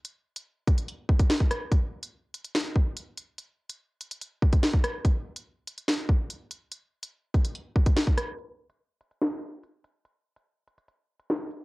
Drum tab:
HH |x--x--xxx--x--x-|x--x--xxx---x-x-|x--x--xxx--x--x-|x--x--xxx---x-x-|
SD |------------o-r-|--------o-------|------------o-r-|--------o-------|
BD |------o---oo-o--|o---------o-----|----------oo-o--|o---------o-----|

HH |x--x--xxx--x--x-|x--x--xxx---x-x-|x--x--xxx--x--x-|
SD |------------o-r-|--------o-------|------------o---|
BD |------o---oo-o--|----------------|----------------|